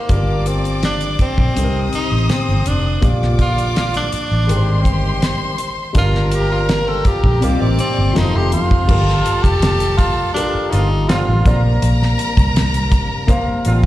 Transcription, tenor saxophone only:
0, 0, Header, 1, 2, 480
1, 0, Start_track
1, 0, Tempo, 732601
1, 64, Time_signature, 4, 2, 24, 8
1, 9082, End_track
2, 0, Start_track
2, 0, Title_t, "Tenor saxophone"
2, 0, Program_c, 0, 66
2, 0, Note_on_c, 0, 58, 82
2, 313, Note_on_c, 0, 60, 80
2, 323, Note_off_c, 0, 58, 0
2, 548, Note_off_c, 0, 60, 0
2, 554, Note_on_c, 0, 62, 87
2, 772, Note_off_c, 0, 62, 0
2, 797, Note_on_c, 0, 60, 93
2, 1244, Note_off_c, 0, 60, 0
2, 1279, Note_on_c, 0, 63, 90
2, 1511, Note_on_c, 0, 60, 90
2, 1521, Note_off_c, 0, 63, 0
2, 1751, Note_on_c, 0, 62, 89
2, 1761, Note_off_c, 0, 60, 0
2, 2050, Note_off_c, 0, 62, 0
2, 2237, Note_on_c, 0, 65, 98
2, 2454, Note_off_c, 0, 65, 0
2, 2473, Note_on_c, 0, 65, 97
2, 2580, Note_off_c, 0, 65, 0
2, 2599, Note_on_c, 0, 62, 100
2, 3285, Note_off_c, 0, 62, 0
2, 3920, Note_on_c, 0, 65, 111
2, 4159, Note_on_c, 0, 67, 100
2, 4168, Note_off_c, 0, 65, 0
2, 4268, Note_off_c, 0, 67, 0
2, 4272, Note_on_c, 0, 65, 86
2, 4393, Note_on_c, 0, 70, 93
2, 4402, Note_off_c, 0, 65, 0
2, 4510, Note_on_c, 0, 69, 95
2, 4520, Note_off_c, 0, 70, 0
2, 4634, Note_on_c, 0, 67, 92
2, 4644, Note_off_c, 0, 69, 0
2, 4875, Note_on_c, 0, 58, 82
2, 4885, Note_off_c, 0, 67, 0
2, 4988, Note_on_c, 0, 60, 81
2, 4998, Note_off_c, 0, 58, 0
2, 5106, Note_off_c, 0, 60, 0
2, 5109, Note_on_c, 0, 60, 90
2, 5356, Note_on_c, 0, 63, 89
2, 5366, Note_off_c, 0, 60, 0
2, 5480, Note_on_c, 0, 67, 90
2, 5490, Note_off_c, 0, 63, 0
2, 5590, Note_off_c, 0, 67, 0
2, 5594, Note_on_c, 0, 65, 86
2, 6178, Note_on_c, 0, 67, 106
2, 6188, Note_off_c, 0, 65, 0
2, 6531, Note_off_c, 0, 67, 0
2, 6535, Note_on_c, 0, 65, 93
2, 6762, Note_off_c, 0, 65, 0
2, 6775, Note_on_c, 0, 62, 94
2, 7016, Note_on_c, 0, 63, 90
2, 7026, Note_off_c, 0, 62, 0
2, 7259, Note_on_c, 0, 65, 84
2, 7269, Note_off_c, 0, 63, 0
2, 7621, Note_off_c, 0, 65, 0
2, 9082, End_track
0, 0, End_of_file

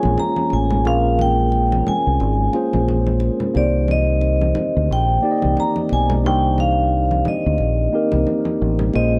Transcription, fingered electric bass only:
0, 0, Header, 1, 3, 480
1, 0, Start_track
1, 0, Tempo, 674157
1, 601, Time_signature, 4, 2, 24, 8
1, 6546, End_track
2, 0, Start_track
2, 0, Title_t, "Fingered electric bass"
2, 0, Program_c, 0, 33
2, 36, Note_on_c, 0, 34, 100
2, 112, Note_off_c, 0, 34, 0
2, 377, Note_on_c, 0, 33, 101
2, 614, Note_off_c, 0, 33, 0
2, 614, Note_on_c, 0, 34, 103
2, 1299, Note_off_c, 0, 34, 0
2, 1473, Note_on_c, 0, 36, 83
2, 1550, Note_off_c, 0, 36, 0
2, 1572, Note_on_c, 0, 32, 103
2, 1764, Note_off_c, 0, 32, 0
2, 1952, Note_on_c, 0, 34, 92
2, 2340, Note_off_c, 0, 34, 0
2, 2533, Note_on_c, 0, 36, 98
2, 3218, Note_off_c, 0, 36, 0
2, 3393, Note_on_c, 0, 38, 94
2, 3470, Note_off_c, 0, 38, 0
2, 3494, Note_on_c, 0, 34, 96
2, 3685, Note_off_c, 0, 34, 0
2, 3877, Note_on_c, 0, 36, 85
2, 3952, Note_off_c, 0, 36, 0
2, 4215, Note_on_c, 0, 35, 85
2, 4457, Note_off_c, 0, 35, 0
2, 4457, Note_on_c, 0, 36, 109
2, 5140, Note_off_c, 0, 36, 0
2, 5313, Note_on_c, 0, 38, 93
2, 5390, Note_off_c, 0, 38, 0
2, 5411, Note_on_c, 0, 34, 95
2, 5603, Note_off_c, 0, 34, 0
2, 5790, Note_on_c, 0, 36, 85
2, 5868, Note_off_c, 0, 36, 0
2, 6136, Note_on_c, 0, 33, 99
2, 6326, Note_off_c, 0, 33, 0
2, 6374, Note_on_c, 0, 34, 111
2, 6546, Note_off_c, 0, 34, 0
2, 6546, End_track
3, 0, Start_track
3, 0, Title_t, "Muted fingered electric bass strokes"
3, 1338, Note_on_c, 9, 29, 51
3, 1409, Note_off_c, 9, 29, 0
3, 3255, Note_on_c, 9, 29, 49
3, 3326, Note_off_c, 9, 29, 0
3, 5173, Note_on_c, 9, 29, 49
3, 5244, Note_off_c, 9, 29, 0
3, 6546, End_track
0, 0, End_of_file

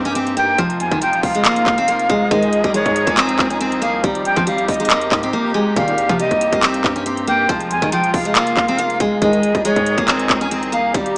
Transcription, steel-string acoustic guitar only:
0, 0, Header, 1, 2, 480
1, 0, Start_track
1, 0, Tempo, 431655
1, 649, Time_signature, 4, 2, 24, 8
1, 12430, End_track
2, 0, Start_track
2, 0, Title_t, "Steel-string acoustic guitar"
2, 0, Program_c, 0, 25
2, 59, Note_on_c, 0, 61, 76
2, 157, Note_off_c, 0, 61, 0
2, 171, Note_on_c, 0, 60, 77
2, 382, Note_off_c, 0, 60, 0
2, 409, Note_on_c, 0, 58, 81
2, 621, Note_off_c, 0, 58, 0
2, 650, Note_on_c, 0, 53, 99
2, 995, Note_off_c, 0, 53, 0
2, 1017, Note_on_c, 0, 51, 87
2, 1116, Note_off_c, 0, 51, 0
2, 1128, Note_on_c, 0, 53, 88
2, 1474, Note_off_c, 0, 53, 0
2, 1502, Note_on_c, 0, 56, 67
2, 1599, Note_off_c, 0, 56, 0
2, 1610, Note_on_c, 0, 58, 87
2, 1955, Note_off_c, 0, 58, 0
2, 1980, Note_on_c, 0, 60, 81
2, 2078, Note_off_c, 0, 60, 0
2, 2093, Note_on_c, 0, 58, 80
2, 2303, Note_off_c, 0, 58, 0
2, 2330, Note_on_c, 0, 56, 84
2, 2541, Note_off_c, 0, 56, 0
2, 2570, Note_on_c, 0, 56, 92
2, 2915, Note_off_c, 0, 56, 0
2, 2937, Note_on_c, 0, 55, 74
2, 3036, Note_off_c, 0, 55, 0
2, 3049, Note_on_c, 0, 56, 79
2, 3394, Note_off_c, 0, 56, 0
2, 3412, Note_on_c, 0, 58, 80
2, 3513, Note_off_c, 0, 58, 0
2, 3527, Note_on_c, 0, 60, 107
2, 3874, Note_off_c, 0, 60, 0
2, 3896, Note_on_c, 0, 61, 73
2, 3996, Note_off_c, 0, 61, 0
2, 4013, Note_on_c, 0, 60, 86
2, 4223, Note_off_c, 0, 60, 0
2, 4244, Note_on_c, 0, 58, 82
2, 4458, Note_off_c, 0, 58, 0
2, 4491, Note_on_c, 0, 55, 92
2, 4836, Note_off_c, 0, 55, 0
2, 4853, Note_on_c, 0, 53, 90
2, 4954, Note_off_c, 0, 53, 0
2, 4968, Note_on_c, 0, 55, 83
2, 5314, Note_off_c, 0, 55, 0
2, 5336, Note_on_c, 0, 56, 74
2, 5436, Note_off_c, 0, 56, 0
2, 5452, Note_on_c, 0, 58, 84
2, 5796, Note_off_c, 0, 58, 0
2, 5821, Note_on_c, 0, 60, 79
2, 5919, Note_off_c, 0, 60, 0
2, 5929, Note_on_c, 0, 58, 77
2, 6141, Note_off_c, 0, 58, 0
2, 6163, Note_on_c, 0, 56, 83
2, 6377, Note_off_c, 0, 56, 0
2, 6416, Note_on_c, 0, 55, 94
2, 6758, Note_off_c, 0, 55, 0
2, 6777, Note_on_c, 0, 53, 85
2, 6876, Note_off_c, 0, 53, 0
2, 6889, Note_on_c, 0, 55, 75
2, 7234, Note_off_c, 0, 55, 0
2, 7256, Note_on_c, 0, 58, 80
2, 7356, Note_off_c, 0, 58, 0
2, 7369, Note_on_c, 0, 60, 96
2, 7715, Note_off_c, 0, 60, 0
2, 7738, Note_on_c, 0, 61, 75
2, 7837, Note_off_c, 0, 61, 0
2, 7851, Note_on_c, 0, 60, 80
2, 8062, Note_off_c, 0, 60, 0
2, 8089, Note_on_c, 0, 58, 78
2, 8301, Note_off_c, 0, 58, 0
2, 8330, Note_on_c, 0, 53, 100
2, 8675, Note_off_c, 0, 53, 0
2, 8698, Note_on_c, 0, 51, 85
2, 8797, Note_off_c, 0, 51, 0
2, 8810, Note_on_c, 0, 53, 89
2, 9155, Note_off_c, 0, 53, 0
2, 9182, Note_on_c, 0, 56, 67
2, 9279, Note_off_c, 0, 56, 0
2, 9290, Note_on_c, 0, 58, 90
2, 9635, Note_off_c, 0, 58, 0
2, 9659, Note_on_c, 0, 60, 82
2, 9758, Note_off_c, 0, 60, 0
2, 9774, Note_on_c, 0, 58, 82
2, 9983, Note_off_c, 0, 58, 0
2, 10009, Note_on_c, 0, 56, 81
2, 10221, Note_off_c, 0, 56, 0
2, 10251, Note_on_c, 0, 56, 91
2, 10595, Note_off_c, 0, 56, 0
2, 10617, Note_on_c, 0, 55, 73
2, 10716, Note_off_c, 0, 55, 0
2, 10729, Note_on_c, 0, 56, 79
2, 11075, Note_off_c, 0, 56, 0
2, 11093, Note_on_c, 0, 58, 83
2, 11194, Note_off_c, 0, 58, 0
2, 11209, Note_on_c, 0, 60, 102
2, 11554, Note_off_c, 0, 60, 0
2, 11576, Note_on_c, 0, 61, 72
2, 11676, Note_off_c, 0, 61, 0
2, 11693, Note_on_c, 0, 60, 82
2, 11903, Note_off_c, 0, 60, 0
2, 11923, Note_on_c, 0, 58, 79
2, 12138, Note_off_c, 0, 58, 0
2, 12171, Note_on_c, 0, 55, 91
2, 12430, Note_off_c, 0, 55, 0
2, 12430, End_track
0, 0, End_of_file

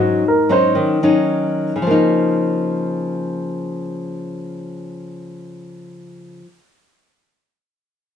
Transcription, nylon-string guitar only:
0, 0, Header, 1, 2, 480
1, 0, Start_track
1, 0, Key_signature, -5, "major"
1, 0, Tempo, 500000
1, 7832, End_track
2, 0, Start_track
2, 0, Title_t, "Nylon-string guitar"
2, 0, Program_c, 0, 24
2, 0, Note_on_c, 0, 44, 59
2, 0, Note_on_c, 0, 54, 51
2, 0, Note_on_c, 0, 61, 47
2, 0, Note_on_c, 0, 63, 53
2, 221, Note_off_c, 0, 54, 0
2, 222, Note_off_c, 0, 61, 0
2, 225, Note_off_c, 0, 63, 0
2, 474, Note_on_c, 0, 54, 53
2, 481, Note_on_c, 0, 61, 50
2, 484, Note_on_c, 0, 63, 58
2, 697, Note_off_c, 0, 44, 0
2, 721, Note_on_c, 0, 51, 59
2, 937, Note_off_c, 0, 54, 0
2, 939, Note_off_c, 0, 61, 0
2, 942, Note_off_c, 0, 63, 0
2, 987, Note_on_c, 0, 54, 57
2, 992, Note_on_c, 0, 61, 59
2, 994, Note_on_c, 0, 63, 58
2, 1682, Note_off_c, 0, 51, 0
2, 1686, Note_on_c, 0, 49, 48
2, 1696, Note_off_c, 0, 54, 0
2, 1697, Note_off_c, 0, 61, 0
2, 1698, Note_off_c, 0, 63, 0
2, 1747, Note_on_c, 0, 53, 53
2, 1793, Note_on_c, 0, 58, 58
2, 1829, Note_on_c, 0, 63, 55
2, 6139, Note_off_c, 0, 49, 0
2, 6201, Note_off_c, 0, 53, 0
2, 6247, Note_off_c, 0, 58, 0
2, 6282, Note_off_c, 0, 63, 0
2, 7832, End_track
0, 0, End_of_file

